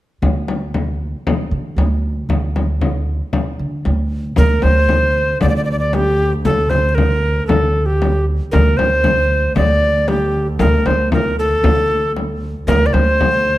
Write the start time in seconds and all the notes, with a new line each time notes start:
0.22 D2, frame drum
0.48 frame drum
0.74 frame drum
1.27 frame drum
1.51 D3
1.76 D2, frame drum
2.29 D2, frame drum
2.56 frame drum
2.81 frame drum
3.33 frame drum
3.59 D3
3.85 D2, frame drum
4.36 D2 A#4, frame drum
4.62 D2 C5, frame drum
4.89 frame drum
5.41 D2 D5, frame drum
5.49 D5
5.56 D5
5.65 D5
5.72 D5
5.79 D5
5.93 G4, frame drum
6.45 D2 A4, frame drum
6.70 D2 C5, frame drum
6.89 C5
6.95 A#4, frame drum
7.47 D2 A4, frame drum
7.86 G4
8.02 frame drum
8.52 D2 A#4, frame drum
8.77 D2 C5, frame drum
9.04 frame drum
9.56 D2 D5, frame drum
10.08 G4, frame drum
10.59 D2 A#4, frame drum
10.85 D2 C5, frame drum
11.12 A#4, frame drum
11.39 A4
11.63 D2, frame drum
12.17 frame drum
12.67 D2 A#4, frame drum
12.86 D5
12.93 D2 C5, frame drum
13.21 frame drum